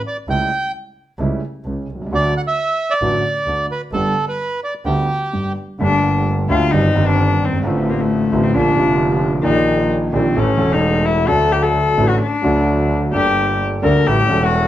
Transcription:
0.07 D5
0.27 C#2 C#3 G3 A3 E4 G5
1.19 C#2 C#3 G3 A3 E4
1.65 C#2 C#3
1.88 C2
1.95 B1
2.01 C2
2.06 C#2 D2
2.12 D2 D3 F#3 A3 F#4 D5
2.37 F#5
2.47 E5
2.90 D5
3.01 A1 A2 D3 F#3 A3 F#4
3.46 D2 D3
3.71 B4
3.92 G1 G2 D3 G3 B3 G4 A4
4.28 B4
4.64 D5
4.85 D2 D3 G3 B3 G4
5.33 G1 G2
5.79 G1 G2 D3 A3 A#3 D4
5.83 G4
6.49 D2 D3 A3 A#3 F4 G4
6.71 G1 G2 D#3 G3 C4 D#4 G4
6.94 G1 G2 D#3 G3 C4 G4
7.08 D4
7.42 G1 C4
7.47 F#1
7.53 G1
7.59 G#1 D3
7.64 A1 A2 A3 C4 F4
7.90 A#3
8.01 A3
8.32 A1 A2 D3 A3 C4 F4
8.43 C4
8.54 A#1 A#2 D3 F3 A#3 F4
8.58 D4
8.76 F1 F2 D3 F3 A#3 F4
9.42 A#1 A#2 D#3 A#3 D#4 D5
9.46 A#1 G4
10.13 A#1 A#2 D#3 A#3 C4 D4 G4
10.35 A1 A2 E3 A3 C#4 A4
10.56 E1 E2 E3 A3 C#4
10.60 E1 A4
10.73 D#4
11.05 E4
11.25 D2 D3 F#3 A3 D4 A4
11.52 G4
11.63 A4
11.97 A1 A2 F#3 A3 D4 A4
12.09 F#4
12.22 D4
12.42 D2 D3 F#3 A3 D4
12.46 A4
13.11 G1 G2 G3 A#3 D4 G4
13.16 A4
13.82 D2 D3 G3 A#3 D4 A4 A#4
14.06 A1 A2 G3 C#4 E4 G4 A4
14.27 E1 E2 G3 C#4 E4
14.31 A4
14.45 F#4

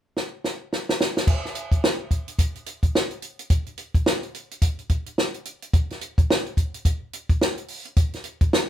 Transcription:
0.17 snare
0.44 snare
0.73 snare
0.89 snare
1.01 snare
1.17 snare
1.27 kick, crash
1.45 snare
1.55 closed hi-hat
1.72 kick, closed hi-hat
1.84 snare
2.11 kick, closed hi-hat
2.28 closed hi-hat
2.39 kick, closed hi-hat
2.56 closed hi-hat
2.66 closed hi-hat
2.83 kick, closed hi-hat
2.95 snare
3.11 closed hi-hat
3.22 closed hi-hat
3.39 closed hi-hat
3.50 kick, closed hi-hat
3.66 closed hi-hat
3.78 closed hi-hat
3.95 kick, closed hi-hat
4.06 snare
4.23 closed hi-hat
4.35 closed hi-hat
4.51 closed hi-hat
4.62 kick, closed hi-hat
4.79 closed hi-hat
4.89 kick, closed hi-hat
5.06 closed hi-hat
5.18 snare
5.34 closed hi-hat
5.45 closed hi-hat
5.62 closed hi-hat
5.73 kick, closed hi-hat
5.90 snare, closed hi-hat
6.01 closed hi-hat
6.18 kick, closed hi-hat
6.30 snare
6.46 closed hi-hat
6.57 kick, closed hi-hat
6.74 closed hi-hat
6.85 kick, closed hi-hat
7.13 closed hi-hat
7.29 kick, closed hi-hat
7.41 snare
7.58 closed hi-hat
7.68 open hi-hat
7.85 closed hi-hat
7.97 kick, closed hi-hat
8.13 snare, closed hi-hat
8.24 closed hi-hat
8.41 kick, closed hi-hat
8.53 snare

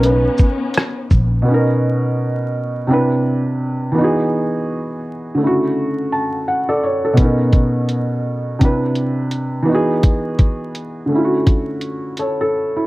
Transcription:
Already playing: B1 C#3 B3 C#4 D#4 B4
0.04 B4, closed hi-hat
0.38 kick, shaker
0.74 cross-stick, closed hi-hat
1.10 A#1, kick, shaker
1.42 B2 B3
1.48 C#4 D#4
1.54 A#4
2.87 C3 C4 D4
2.92 E4 B4
3.92 E3 B3
3.98 D#4 F#4
4.04 G#4
5.34 D3 A3
5.41 C#3 E4
5.47 F#4
6.12 A5
6.48 F#5
6.69 A4 D5
6.84 C#5
7.05 A4
7.13 B2 B3
7.18 C#4, kick, closed hi-hat
7.22 D#4 A#4
7.53 kick, closed hi-hat
7.89 closed hi-hat
8.59 C3 C4 D4, kick, closed hi-hat
8.63 E4 B4
8.95 closed hi-hat
9.31 closed hi-hat
9.63 E3 B3
9.69 D#4 F#4
9.75 G#4
10.03 kick, closed hi-hat
10.39 kick, closed hi-hat
10.75 closed hi-hat
11.06 D3 A3
11.12 C#4 E4
11.18 F4
11.24 F#4
11.46 kick, closed hi-hat
11.81 closed hi-hat
12.17 A4 C#5, closed hi-hat
12.41 A4
12.76 E4

